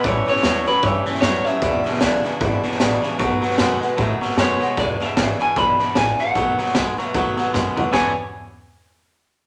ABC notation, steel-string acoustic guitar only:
X:1
M:4/4
L:1/8
Q:"Swing" 1/4=152
K:Emix
V:1 name="Steel-string acoustic guitar"
[A,,E,=G,CE] [G,CE] [A,,E,G,CE] [G,CE] [E,G,CE] [G,CE] [A,,E,G,CE] [G,CE] | [E,,B,,E,G,DE] [E,G,DE] [E,,B,,E,G,DE] [E,G,DE] [E,G,DE] [E,G,DE] [E,,B,,E,G,DE] [E,G,DE] | [B,,^D,A,B,F] [A,B,F] [B,,D,A,B,F] [A,B,F] [D,A,B,F] [A,B,F] [B,,D,A,B,F] [A,B,F] | [E,,B,,E,G,DE] [E,G,DE] [E,G,DE] [E,G,DE] [E,,B,,E,G,DE] [E,G,DE] [E,G,DE] [E,G,DE] |
[B,,^D,A,B,F] [A,B,F] [D,A,B,F] [A,B,F] [B,,D,A,B,F] [A,B,F] [D,A,B,F] [A,B,F] | [D,E,B,CG] z6 z |]